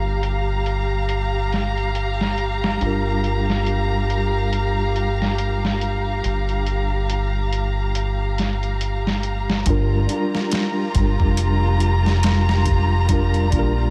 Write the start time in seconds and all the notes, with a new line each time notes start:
Already playing: G1 G3 D4 F4 G4 A#4 F5 A#5
0.23 closed hi-hat
0.66 closed hi-hat
1.09 closed hi-hat
1.52 snare, closed hi-hat
1.78 closed hi-hat
1.95 closed hi-hat
2.21 snare
2.38 closed hi-hat
2.64 snare
2.78 G3 D4, closed hi-hat
2.82 G1 F4
2.86 A#4
3.24 closed hi-hat
3.50 snare
3.66 closed hi-hat
4.10 closed hi-hat
4.53 closed hi-hat
4.96 closed hi-hat
5.22 snare
5.38 closed hi-hat
5.65 snare
5.81 closed hi-hat
6.24 G1, closed hi-hat
6.49 closed hi-hat
6.67 closed hi-hat
7.10 closed hi-hat
7.53 closed hi-hat
7.95 closed hi-hat
8.38 snare, closed hi-hat
8.63 closed hi-hat
8.81 closed hi-hat
9.07 snare
9.23 closed hi-hat
9.50 snare
9.66 G1 G3 D4 F4 G4 A#5, kick, closed hi-hat
9.70 A#4
10.07 G3 D4, closed hi-hat
10.13 F4 A#4
10.35 snare
10.51 snare, closed hi-hat
10.95 G1, kick, closed hi-hat
11.20 F1, kick
11.37 closed hi-hat
11.80 closed hi-hat
12.06 snare
12.23 snare, closed hi-hat
12.49 snare
12.66 kick, closed hi-hat
13.09 G3 D4 F4, kick, closed hi-hat
13.13 A#4
13.34 closed hi-hat
13.50 A#1 G3 D4, kick, closed hi-hat
13.56 F4 A#4